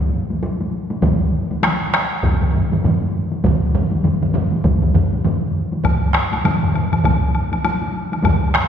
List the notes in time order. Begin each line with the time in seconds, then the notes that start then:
0.30 taiko high
0.43 taiko high
0.61 taiko high
0.90 taiko high
1.02 taiko, taiko low-mid, taiko mid, taiko high
1.51 taiko high
1.63 taiko rim, taiko high
1.94 taiko rim
2.23 taiko, taiko low-mid, taiko mid, taiko high
2.41 taiko low-mid, taiko mid
2.54 taiko low-mid, taiko mid
2.72 taiko low-mid, taiko mid, taiko high
2.84 taiko low-mid, taiko mid, taiko high
3.02 taiko high
3.32 taiko high
3.44 taiko, taiko low-mid, taiko mid, taiko high
3.74 taiko low-mid, taiko mid
3.92 taiko high
4.04 taiko low-mid, taiko mid, taiko high
4.22 taiko low-mid, taiko mid
4.34 taiko low-mid, taiko mid
4.52 taiko high
4.64 taiko, taiko low-mid, taiko mid, taiko high
4.82 taiko low-mid, taiko mid
4.94 taiko low-mid, taiko mid
5.13 taiko high
5.25 taiko low-mid, taiko mid, taiko high
5.72 taiko high
5.84 taiko, taiko low-mid, taiko mid, taiko high, high woodblock
6.14 taiko rim, high woodblock
6.33 taiko high, high woodblock
6.44 taiko low-mid, taiko mid, taiko high, high woodblock
6.63 taiko low-mid, taiko mid
6.74 taiko low-mid, taiko mid, high woodblock
6.92 taiko low-mid, taiko mid, taiko high, high woodblock
7.04 taiko, taiko low-mid, taiko mid, taiko high, high woodblock
7.35 high woodblock
7.52 taiko high, high woodblock
7.64 taiko high, high woodblock
7.82 taiko high
8.12 taiko high, high woodblock
8.24 taiko, taiko low-mid, taiko mid, taiko high, high woodblock
8.54 taiko rim